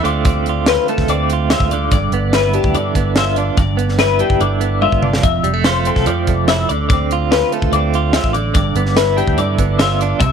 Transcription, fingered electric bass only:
0, 0, Header, 1, 2, 480
1, 0, Start_track
1, 0, Tempo, 414651
1, 302, Time_signature, 4, 2, 24, 8
1, 11949, End_track
2, 0, Start_track
2, 0, Title_t, "Fingered electric bass"
2, 0, Program_c, 0, 33
2, 45, Note_on_c, 0, 38, 89
2, 887, Note_off_c, 0, 38, 0
2, 1135, Note_on_c, 0, 38, 73
2, 1236, Note_off_c, 0, 38, 0
2, 1243, Note_on_c, 0, 38, 85
2, 1774, Note_off_c, 0, 38, 0
2, 1848, Note_on_c, 0, 38, 73
2, 2169, Note_off_c, 0, 38, 0
2, 2215, Note_on_c, 0, 31, 80
2, 2429, Note_off_c, 0, 31, 0
2, 2452, Note_on_c, 0, 31, 91
2, 2980, Note_off_c, 0, 31, 0
2, 3053, Note_on_c, 0, 38, 80
2, 3164, Note_off_c, 0, 38, 0
2, 3170, Note_on_c, 0, 43, 85
2, 3386, Note_off_c, 0, 43, 0
2, 3411, Note_on_c, 0, 31, 89
2, 4044, Note_off_c, 0, 31, 0
2, 4143, Note_on_c, 0, 31, 90
2, 4875, Note_off_c, 0, 31, 0
2, 4977, Note_on_c, 0, 31, 74
2, 5087, Note_off_c, 0, 31, 0
2, 5094, Note_on_c, 0, 31, 87
2, 5623, Note_off_c, 0, 31, 0
2, 5698, Note_on_c, 0, 31, 73
2, 6017, Note_off_c, 0, 31, 0
2, 6056, Note_on_c, 0, 29, 81
2, 6271, Note_off_c, 0, 29, 0
2, 6292, Note_on_c, 0, 29, 82
2, 6822, Note_off_c, 0, 29, 0
2, 6903, Note_on_c, 0, 36, 72
2, 7012, Note_off_c, 0, 36, 0
2, 7029, Note_on_c, 0, 41, 85
2, 7239, Note_off_c, 0, 41, 0
2, 7256, Note_on_c, 0, 29, 83
2, 7680, Note_off_c, 0, 29, 0
2, 7754, Note_on_c, 0, 38, 86
2, 8587, Note_off_c, 0, 38, 0
2, 8822, Note_on_c, 0, 38, 78
2, 8927, Note_off_c, 0, 38, 0
2, 8934, Note_on_c, 0, 38, 92
2, 9462, Note_off_c, 0, 38, 0
2, 9533, Note_on_c, 0, 33, 75
2, 9852, Note_off_c, 0, 33, 0
2, 9900, Note_on_c, 0, 31, 81
2, 10112, Note_off_c, 0, 31, 0
2, 10132, Note_on_c, 0, 31, 103
2, 10658, Note_off_c, 0, 31, 0
2, 10736, Note_on_c, 0, 38, 84
2, 10845, Note_off_c, 0, 38, 0
2, 10862, Note_on_c, 0, 43, 87
2, 11071, Note_off_c, 0, 43, 0
2, 11093, Note_on_c, 0, 31, 94
2, 11719, Note_off_c, 0, 31, 0
2, 11809, Note_on_c, 0, 36, 102
2, 11949, Note_off_c, 0, 36, 0
2, 11949, End_track
0, 0, End_of_file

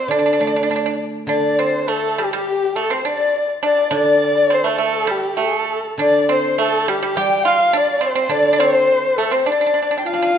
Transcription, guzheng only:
0, 0, Header, 1, 2, 480
1, 0, Start_track
1, 0, Tempo, 593472
1, 80, Time_signature, 2, 2, 24, 8
1, 2002, Tempo, 585938
1, 5842, Tempo, 571973
1, 7282, Tempo, 594648
1, 8495, End_track
2, 0, Start_track
2, 0, Title_t, "Guzheng"
2, 0, Program_c, 0, 107
2, 66, Note_on_c, 0, 50, 53
2, 323, Note_on_c, 0, 57, 38
2, 562, Note_on_c, 0, 62, 40
2, 1016, Note_off_c, 0, 50, 0
2, 1026, Note_on_c, 0, 50, 54
2, 1288, Note_off_c, 0, 57, 0
2, 1529, Note_off_c, 0, 62, 0
2, 2471, Note_off_c, 0, 50, 0
2, 3174, Note_on_c, 0, 50, 59
2, 4624, Note_off_c, 0, 50, 0
2, 4869, Note_on_c, 0, 50, 50
2, 5844, Note_on_c, 0, 55, 57
2, 6316, Note_off_c, 0, 50, 0
2, 6787, Note_on_c, 0, 50, 55
2, 7283, Note_off_c, 0, 55, 0
2, 8235, Note_off_c, 0, 50, 0
2, 8495, End_track
0, 0, End_of_file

